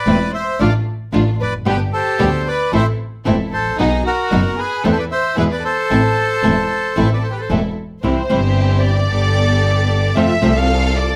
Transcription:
Already playing: violin section B4, bandoneon B4 D5
0.06 double bass E1, nylon-string guitar E3 A3 C4 E4, string section A3 C4 E4
0.34 violin section C5, bandoneon C5 E5
0.59 double bass A1, nylon-string guitar D3 A3 D4 F4, string section A3 D4 F4, violin section D5, bandoneon D5 F5
1.13 double bass A1, nylon-string guitar D3 A3 D4 F4, string section A3 D4 F4
1.40 double bass F1, violin section B4, bandoneon B4 D5
1.65 double bass G1, nylon-string guitar B2 D3 G3 B3 G4, string section B3 D4 G4, violin section G4, bandoneon G4 B4
1.93 violin section G4, bandoneon A4 C5
2.19 double bass D2, nylon-string guitar B2 D3 G3 B3 G4, string section B3 D4 G4
2.48 bandoneon B4 D5, violin section B4
2.72 double bass A1, nylon-string guitar E3 A3 C4 E4, string section C4 E4 A4, violin section C5, bandoneon C5 E5
3.25 double bass E1, nylon-string guitar E3 A3 C4 E4, string section C4 E4 A4
3.52 double bass A1, violin section A4, bandoneon A4 C5
3.78 double bass B1, nylon-string guitar B2 F#3 B3 D#4 F#4, string section B3 D#4 F#4, violin section D#4, bandoneon D#4 G#4
4.04 violin section F#4, bandoneon F#4 A#4
4.30 double bass F#1, nylon-string guitar B2 F#3 B3 D#4 F#4, string section B3 D#4 F#4
4.58 violin section G#4, bandoneon G#4 B4
4.83 double bass E2, nylon-string guitar E3 A3 C4 E4, string section C4 E4 A4, violin section A4
4.88 violin section G4, bandoneon B4 C5
4.92 violin section A4, bandoneon A4
4.97 violin section B4, bandoneon B4 D5
5.11 violin section C5, bandoneon C5 E5
5.36 double bass E2, nylon-string guitar B2 E3 G#3 B3 E4, string section B3 E4 G#4, violin section B4, bandoneon B4 E5
5.51 violin section B4, bandoneon B4 D5
5.63 violin section A4, bandoneon A4 C5
5.90 double bass A1, nylon-string guitar E3 A3 C4 E4, string section C4 E4 A4
6.43 double bass E1, nylon-string guitar E3 A3 C4 E4, string section C4 E4 A4
6.96 double bass A1, nylon-string guitar E3 A3 C4 E4, string section C4 E4 A4
7.13 violin section B4, bandoneon D5
7.21 violin section A4, bandoneon C5
7.31 violin section G4, bandoneon B4
7.39 violin section A4, bandoneon C5
7.50 double bass E1, nylon-string guitar E3 A3 C4 E4, string section C4 E4 A4
8.02 double bass C2, nylon-string guitar C3 E3 G3 C4 E4, string section C4 E4 G4, violin section C5
8.29 double bass G1, nylon-string guitar C3 E3 G3 C4 E4, string section C4 E4 G4
8.83 violin section D5
9.09 double bass G1, string section B3 G4 A4
10.15 double bass F2, nylon-string guitar C3 F3 A3 C4 F4, string section C4 F4 A4, violin section E5
10.42 double bass C2, nylon-string guitar C3 F3 A3 C4 F4, string section C4 F4 A4
10.56 violin section F5
10.96 violin section D5

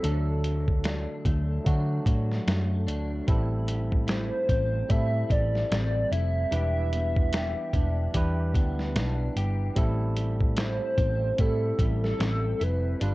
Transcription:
Already playing: clean electric guitar G3 C4, soft synth lead A4
0.03 picked electric bass D2, clean electric guitar D3 D4, tine electric piano F#3 A3 D4 A4, closed hi-hat
0.44 clean electric guitar F#3, closed hi-hat
0.68 kick
0.84 clean electric guitar D4, snare, closed hi-hat
1.25 picked electric bass D2, clean electric guitar A3, kick, closed hi-hat
1.64 picked electric bass D3, tine electric piano F#3 A3 D4 F#4, clean electric guitar D4, kick, closed hi-hat
2.06 picked electric bass A2, clean electric guitar F#3, kick, closed hi-hat
2.32 snare
2.47 picked electric bass F#2, clean electric guitar A3, snare, closed hi-hat
2.87 picked electric bass D2, clean electric guitar D4, closed hi-hat
3.27 picked electric bass A1, clean electric guitar A2 E4, tine electric piano G3 C4 E4 A4, kick, closed hi-hat
3.67 clean electric guitar G3, closed hi-hat
3.92 kick
4.07 clean electric guitar E4, soft synth lead C5, snare, closed hi-hat
4.49 picked electric bass A1, clean electric guitar C4, kick, closed hi-hat
4.89 picked electric bass A2, tine electric piano G3 C4 E4 A4, clean electric guitar E4, soft synth lead E5, kick, closed hi-hat
5.29 picked electric bass A1, clean electric guitar G3, soft synth lead D5, kick, closed hi-hat
5.55 snare
5.71 picked electric bass A1, clean electric guitar C4, soft synth lead D5, snare, closed hi-hat
6.11 picked electric bass F1, clean electric guitar E4, soft synth lead E5, closed hi-hat
6.51 picked electric bass E1, clean electric guitar E3 G4, tine electric piano G3 D4 E4 B4, closed hi-hat
6.93 clean electric guitar B3, closed hi-hat
7.16 kick
7.33 clean electric guitar G4, snare, closed hi-hat
7.73 picked electric bass E1, clean electric guitar D4, kick, closed hi-hat
8.14 picked electric bass E2, tine electric piano G3 D4 E4 B4, clean electric guitar G4, kick, closed hi-hat
8.54 picked electric bass D2, clean electric guitar B3, kick, closed hi-hat
8.79 snare
8.96 picked electric bass B1, clean electric guitar D4, snare, closed hi-hat
9.36 picked electric bass G1, clean electric guitar G4, closed hi-hat
9.76 picked electric bass A1, clean electric guitar A2 E4, tine electric piano G3 C4 E4 A4, kick, closed hi-hat
10.17 clean electric guitar G3, closed hi-hat
10.41 kick
10.57 clean electric guitar E4, soft synth lead C5, snare, closed hi-hat
10.98 picked electric bass A1, clean electric guitar C4, kick, closed hi-hat
11.38 picked electric bass A2, tine electric piano G3 C4 E4 A4, clean electric guitar E4, soft synth lead A4, kick, closed hi-hat
11.79 picked electric bass A1, clean electric guitar G3, kick, closed hi-hat
12.04 soft synth lead A4, snare
12.19 picked electric bass A1, clean electric guitar C4, snare, closed hi-hat
12.60 picked electric bass F1, clean electric guitar E4, soft synth lead B4, closed hi-hat
13.00 picked electric bass G1, clean electric guitar G2 D4, tine electric piano G3 D4 F4 B4, closed hi-hat

